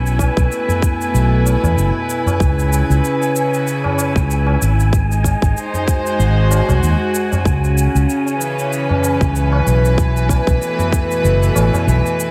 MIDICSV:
0, 0, Header, 1, 6, 480
1, 0, Start_track
1, 0, Key_signature, 4, "minor"
1, 0, Tempo, 631579
1, 1826, Time_signature, 4, 2, 24, 8
1, 9355, End_track
2, 0, Start_track
2, 0, Title_t, "Synth texture"
2, 0, Program_c, 0, 99
2, 0, Note_on_c, 0, 80, 71
2, 9355, Note_off_c, 0, 80, 0
2, 9355, End_track
3, 0, Start_track
3, 0, Title_t, "String section"
3, 0, Program_c, 1, 48
3, 0, Note_on_c, 1, 47, 68
3, 0, Note_on_c, 1, 61, 81
3, 0, Note_on_c, 1, 64, 61
3, 0, Note_on_c, 1, 71, 67
3, 192, Note_on_c, 1, 57, 65
3, 678, Note_off_c, 1, 61, 0
3, 1824, Note_on_c, 1, 49, 79
3, 1826, Note_off_c, 1, 47, 0
3, 1827, Note_off_c, 1, 57, 0
3, 1966, Note_on_c, 1, 61, 64
3, 3742, Note_off_c, 1, 64, 0
3, 3743, Note_off_c, 1, 71, 0
3, 3743, Note_on_c, 1, 56, 75
3, 3745, Note_off_c, 1, 49, 0
3, 3745, Note_off_c, 1, 61, 0
3, 3822, Note_on_c, 1, 63, 63
3, 4214, Note_on_c, 1, 72, 81
3, 4426, Note_on_c, 1, 66, 73
3, 5664, Note_off_c, 1, 56, 0
3, 5664, Note_on_c, 1, 49, 79
3, 5666, Note_off_c, 1, 63, 0
3, 5667, Note_off_c, 1, 72, 0
3, 5791, Note_on_c, 1, 61, 72
3, 6329, Note_on_c, 1, 52, 80
3, 6357, Note_on_c, 1, 71, 84
3, 6441, Note_off_c, 1, 66, 0
3, 7582, Note_on_c, 1, 47, 68
3, 7585, Note_off_c, 1, 49, 0
3, 7906, Note_on_c, 1, 57, 66
3, 8216, Note_off_c, 1, 61, 0
3, 9355, Note_off_c, 1, 47, 0
3, 9355, Note_off_c, 1, 52, 0
3, 9355, Note_off_c, 1, 57, 0
3, 9355, Note_off_c, 1, 71, 0
3, 9355, End_track
4, 0, Start_track
4, 0, Title_t, "Fretless electric bass"
4, 0, Program_c, 2, 35
4, 0, Note_on_c, 2, 35, 69
4, 216, Note_off_c, 2, 35, 0
4, 280, Note_on_c, 2, 35, 81
4, 354, Note_off_c, 2, 35, 0
4, 867, Note_on_c, 2, 35, 88
4, 1177, Note_off_c, 2, 35, 0
4, 1240, Note_on_c, 2, 40, 83
4, 1314, Note_off_c, 2, 40, 0
4, 1348, Note_on_c, 2, 30, 80
4, 1441, Note_off_c, 2, 30, 0
4, 1824, Note_on_c, 2, 37, 87
4, 2136, Note_off_c, 2, 37, 0
4, 2201, Note_on_c, 2, 37, 86
4, 2275, Note_off_c, 2, 37, 0
4, 3159, Note_on_c, 2, 37, 94
4, 3455, Note_off_c, 2, 37, 0
4, 3507, Note_on_c, 2, 32, 78
4, 4057, Note_off_c, 2, 32, 0
4, 4120, Note_on_c, 2, 32, 87
4, 4194, Note_off_c, 2, 32, 0
4, 4705, Note_on_c, 2, 32, 91
4, 5016, Note_off_c, 2, 32, 0
4, 5080, Note_on_c, 2, 36, 85
4, 5154, Note_off_c, 2, 36, 0
4, 5187, Note_on_c, 2, 39, 79
4, 5281, Note_off_c, 2, 39, 0
4, 5665, Note_on_c, 2, 37, 83
4, 5976, Note_off_c, 2, 37, 0
4, 6040, Note_on_c, 2, 37, 86
4, 6114, Note_off_c, 2, 37, 0
4, 6998, Note_on_c, 2, 37, 90
4, 7294, Note_off_c, 2, 37, 0
4, 7343, Note_on_c, 2, 35, 71
4, 7895, Note_off_c, 2, 35, 0
4, 7958, Note_on_c, 2, 35, 87
4, 8033, Note_off_c, 2, 35, 0
4, 8543, Note_on_c, 2, 30, 86
4, 8722, Note_off_c, 2, 30, 0
4, 8783, Note_on_c, 2, 33, 71
4, 8879, Note_off_c, 2, 33, 0
4, 9023, Note_on_c, 2, 35, 76
4, 9119, Note_off_c, 2, 35, 0
4, 9355, End_track
5, 0, Start_track
5, 0, Title_t, "Tabla"
5, 145, Note_on_c, 9, 60, 59
5, 221, Note_off_c, 9, 60, 0
5, 519, Note_on_c, 9, 63, 43
5, 520, Note_on_c, 9, 64, 83
5, 595, Note_off_c, 9, 63, 0
5, 596, Note_off_c, 9, 64, 0
5, 1108, Note_on_c, 9, 60, 61
5, 1184, Note_off_c, 9, 60, 0
5, 1242, Note_on_c, 9, 64, 75
5, 1244, Note_on_c, 9, 60, 59
5, 1246, Note_on_c, 9, 63, 40
5, 1318, Note_off_c, 9, 64, 0
5, 1320, Note_off_c, 9, 60, 0
5, 1322, Note_off_c, 9, 63, 0
5, 1588, Note_on_c, 9, 63, 33
5, 1664, Note_off_c, 9, 63, 0
5, 1719, Note_on_c, 9, 64, 86
5, 1727, Note_on_c, 9, 60, 57
5, 1795, Note_off_c, 9, 64, 0
5, 1803, Note_off_c, 9, 60, 0
5, 2440, Note_on_c, 9, 63, 47
5, 2516, Note_off_c, 9, 63, 0
5, 2920, Note_on_c, 9, 60, 61
5, 2925, Note_on_c, 9, 64, 82
5, 2996, Note_off_c, 9, 60, 0
5, 3001, Note_off_c, 9, 64, 0
5, 3025, Note_on_c, 9, 60, 59
5, 3101, Note_off_c, 9, 60, 0
5, 3394, Note_on_c, 9, 60, 61
5, 3470, Note_off_c, 9, 60, 0
5, 3503, Note_on_c, 9, 63, 30
5, 3579, Note_off_c, 9, 63, 0
5, 3987, Note_on_c, 9, 60, 50
5, 4063, Note_off_c, 9, 60, 0
5, 4360, Note_on_c, 9, 64, 79
5, 4361, Note_on_c, 9, 63, 49
5, 4436, Note_off_c, 9, 64, 0
5, 4437, Note_off_c, 9, 63, 0
5, 4948, Note_on_c, 9, 60, 61
5, 5024, Note_off_c, 9, 60, 0
5, 5079, Note_on_c, 9, 64, 68
5, 5081, Note_on_c, 9, 60, 53
5, 5082, Note_on_c, 9, 63, 47
5, 5155, Note_off_c, 9, 64, 0
5, 5157, Note_off_c, 9, 60, 0
5, 5158, Note_off_c, 9, 63, 0
5, 5428, Note_on_c, 9, 63, 35
5, 5504, Note_off_c, 9, 63, 0
5, 5561, Note_on_c, 9, 60, 56
5, 5566, Note_on_c, 9, 64, 84
5, 5637, Note_off_c, 9, 60, 0
5, 5642, Note_off_c, 9, 64, 0
5, 6277, Note_on_c, 9, 63, 50
5, 6353, Note_off_c, 9, 63, 0
5, 6759, Note_on_c, 9, 60, 65
5, 6765, Note_on_c, 9, 64, 81
5, 6835, Note_off_c, 9, 60, 0
5, 6841, Note_off_c, 9, 64, 0
5, 6862, Note_on_c, 9, 60, 63
5, 6938, Note_off_c, 9, 60, 0
5, 7239, Note_on_c, 9, 60, 67
5, 7315, Note_off_c, 9, 60, 0
5, 7822, Note_on_c, 9, 60, 61
5, 7898, Note_off_c, 9, 60, 0
5, 8197, Note_on_c, 9, 63, 52
5, 8198, Note_on_c, 9, 64, 68
5, 8273, Note_off_c, 9, 63, 0
5, 8274, Note_off_c, 9, 64, 0
5, 8781, Note_on_c, 9, 60, 64
5, 8857, Note_off_c, 9, 60, 0
5, 8917, Note_on_c, 9, 63, 50
5, 8917, Note_on_c, 9, 64, 74
5, 8918, Note_on_c, 9, 60, 60
5, 8993, Note_off_c, 9, 63, 0
5, 8993, Note_off_c, 9, 64, 0
5, 8994, Note_off_c, 9, 60, 0
5, 9355, End_track
6, 0, Start_track
6, 0, Title_t, "Drums"
6, 48, Note_on_c, 9, 82, 27
6, 124, Note_off_c, 9, 82, 0
6, 146, Note_on_c, 9, 36, 54
6, 152, Note_on_c, 9, 82, 77
6, 222, Note_off_c, 9, 36, 0
6, 228, Note_off_c, 9, 82, 0
6, 281, Note_on_c, 9, 36, 105
6, 288, Note_on_c, 9, 82, 30
6, 357, Note_off_c, 9, 36, 0
6, 364, Note_off_c, 9, 82, 0
6, 393, Note_on_c, 9, 82, 39
6, 469, Note_off_c, 9, 82, 0
6, 529, Note_on_c, 9, 82, 29
6, 605, Note_off_c, 9, 82, 0
6, 626, Note_on_c, 9, 36, 97
6, 634, Note_on_c, 9, 82, 67
6, 702, Note_off_c, 9, 36, 0
6, 710, Note_off_c, 9, 82, 0
6, 769, Note_on_c, 9, 82, 30
6, 845, Note_off_c, 9, 82, 0
6, 874, Note_on_c, 9, 82, 41
6, 950, Note_off_c, 9, 82, 0
6, 1115, Note_on_c, 9, 82, 71
6, 1191, Note_off_c, 9, 82, 0
6, 1251, Note_on_c, 9, 82, 30
6, 1327, Note_off_c, 9, 82, 0
6, 1355, Note_on_c, 9, 82, 42
6, 1431, Note_off_c, 9, 82, 0
6, 1594, Note_on_c, 9, 82, 70
6, 1670, Note_off_c, 9, 82, 0
6, 1729, Note_on_c, 9, 82, 29
6, 1805, Note_off_c, 9, 82, 0
6, 1825, Note_on_c, 9, 36, 105
6, 1834, Note_on_c, 9, 82, 42
6, 1901, Note_off_c, 9, 36, 0
6, 1910, Note_off_c, 9, 82, 0
6, 1969, Note_on_c, 9, 82, 27
6, 2045, Note_off_c, 9, 82, 0
6, 2074, Note_on_c, 9, 82, 70
6, 2150, Note_off_c, 9, 82, 0
6, 2210, Note_on_c, 9, 82, 29
6, 2286, Note_off_c, 9, 82, 0
6, 2315, Note_on_c, 9, 82, 39
6, 2391, Note_off_c, 9, 82, 0
6, 2450, Note_on_c, 9, 82, 28
6, 2526, Note_off_c, 9, 82, 0
6, 2554, Note_on_c, 9, 82, 67
6, 2630, Note_off_c, 9, 82, 0
6, 2689, Note_on_c, 9, 82, 28
6, 2765, Note_off_c, 9, 82, 0
6, 2793, Note_on_c, 9, 82, 38
6, 2869, Note_off_c, 9, 82, 0
6, 3032, Note_on_c, 9, 82, 70
6, 3108, Note_off_c, 9, 82, 0
6, 3160, Note_on_c, 9, 36, 95
6, 3169, Note_on_c, 9, 82, 30
6, 3236, Note_off_c, 9, 36, 0
6, 3245, Note_off_c, 9, 82, 0
6, 3273, Note_on_c, 9, 82, 42
6, 3349, Note_off_c, 9, 82, 0
6, 3512, Note_on_c, 9, 82, 69
6, 3588, Note_off_c, 9, 82, 0
6, 3646, Note_on_c, 9, 82, 30
6, 3722, Note_off_c, 9, 82, 0
6, 3745, Note_on_c, 9, 36, 95
6, 3752, Note_on_c, 9, 82, 44
6, 3821, Note_off_c, 9, 36, 0
6, 3828, Note_off_c, 9, 82, 0
6, 3888, Note_on_c, 9, 82, 27
6, 3964, Note_off_c, 9, 82, 0
6, 3985, Note_on_c, 9, 36, 54
6, 3992, Note_on_c, 9, 82, 69
6, 4061, Note_off_c, 9, 36, 0
6, 4068, Note_off_c, 9, 82, 0
6, 4121, Note_on_c, 9, 36, 93
6, 4128, Note_on_c, 9, 82, 28
6, 4197, Note_off_c, 9, 36, 0
6, 4204, Note_off_c, 9, 82, 0
6, 4234, Note_on_c, 9, 82, 39
6, 4310, Note_off_c, 9, 82, 0
6, 4368, Note_on_c, 9, 82, 29
6, 4444, Note_off_c, 9, 82, 0
6, 4466, Note_on_c, 9, 36, 87
6, 4472, Note_on_c, 9, 82, 64
6, 4542, Note_off_c, 9, 36, 0
6, 4548, Note_off_c, 9, 82, 0
6, 4608, Note_on_c, 9, 82, 29
6, 4684, Note_off_c, 9, 82, 0
6, 4712, Note_on_c, 9, 82, 38
6, 4788, Note_off_c, 9, 82, 0
6, 4952, Note_on_c, 9, 82, 69
6, 5028, Note_off_c, 9, 82, 0
6, 5088, Note_on_c, 9, 82, 28
6, 5164, Note_off_c, 9, 82, 0
6, 5194, Note_on_c, 9, 82, 41
6, 5270, Note_off_c, 9, 82, 0
6, 5432, Note_on_c, 9, 82, 62
6, 5508, Note_off_c, 9, 82, 0
6, 5567, Note_on_c, 9, 82, 30
6, 5643, Note_off_c, 9, 82, 0
6, 5665, Note_on_c, 9, 36, 99
6, 5673, Note_on_c, 9, 82, 41
6, 5741, Note_off_c, 9, 36, 0
6, 5749, Note_off_c, 9, 82, 0
6, 5808, Note_on_c, 9, 82, 25
6, 5884, Note_off_c, 9, 82, 0
6, 5912, Note_on_c, 9, 82, 67
6, 5988, Note_off_c, 9, 82, 0
6, 6047, Note_on_c, 9, 82, 30
6, 6123, Note_off_c, 9, 82, 0
6, 6153, Note_on_c, 9, 82, 38
6, 6229, Note_off_c, 9, 82, 0
6, 6288, Note_on_c, 9, 82, 27
6, 6364, Note_off_c, 9, 82, 0
6, 6393, Note_on_c, 9, 82, 68
6, 6469, Note_off_c, 9, 82, 0
6, 6528, Note_on_c, 9, 82, 28
6, 6604, Note_off_c, 9, 82, 0
6, 6632, Note_on_c, 9, 82, 38
6, 6708, Note_off_c, 9, 82, 0
6, 6871, Note_on_c, 9, 82, 68
6, 6947, Note_off_c, 9, 82, 0
6, 6999, Note_on_c, 9, 36, 91
6, 7006, Note_on_c, 9, 82, 30
6, 7075, Note_off_c, 9, 36, 0
6, 7082, Note_off_c, 9, 82, 0
6, 7111, Note_on_c, 9, 82, 40
6, 7187, Note_off_c, 9, 82, 0
6, 7351, Note_on_c, 9, 82, 68
6, 7427, Note_off_c, 9, 82, 0
6, 7486, Note_on_c, 9, 82, 29
6, 7562, Note_off_c, 9, 82, 0
6, 7584, Note_on_c, 9, 36, 103
6, 7591, Note_on_c, 9, 82, 41
6, 7660, Note_off_c, 9, 36, 0
6, 7667, Note_off_c, 9, 82, 0
6, 7727, Note_on_c, 9, 82, 26
6, 7803, Note_off_c, 9, 82, 0
6, 7823, Note_on_c, 9, 36, 57
6, 7831, Note_on_c, 9, 82, 69
6, 7899, Note_off_c, 9, 36, 0
6, 7907, Note_off_c, 9, 82, 0
6, 7958, Note_on_c, 9, 36, 99
6, 7965, Note_on_c, 9, 82, 29
6, 8034, Note_off_c, 9, 36, 0
6, 8041, Note_off_c, 9, 82, 0
6, 8071, Note_on_c, 9, 82, 36
6, 8147, Note_off_c, 9, 82, 0
6, 8205, Note_on_c, 9, 82, 26
6, 8281, Note_off_c, 9, 82, 0
6, 8303, Note_on_c, 9, 36, 87
6, 8310, Note_on_c, 9, 82, 70
6, 8379, Note_off_c, 9, 36, 0
6, 8386, Note_off_c, 9, 82, 0
6, 8444, Note_on_c, 9, 82, 30
6, 8520, Note_off_c, 9, 82, 0
6, 8550, Note_on_c, 9, 82, 37
6, 8626, Note_off_c, 9, 82, 0
6, 8685, Note_on_c, 9, 82, 27
6, 8761, Note_off_c, 9, 82, 0
6, 8790, Note_on_c, 9, 82, 69
6, 8866, Note_off_c, 9, 82, 0
6, 8926, Note_on_c, 9, 82, 29
6, 9002, Note_off_c, 9, 82, 0
6, 9032, Note_on_c, 9, 82, 40
6, 9108, Note_off_c, 9, 82, 0
6, 9168, Note_on_c, 9, 82, 28
6, 9244, Note_off_c, 9, 82, 0
6, 9272, Note_on_c, 9, 82, 71
6, 9348, Note_off_c, 9, 82, 0
6, 9355, End_track
0, 0, End_of_file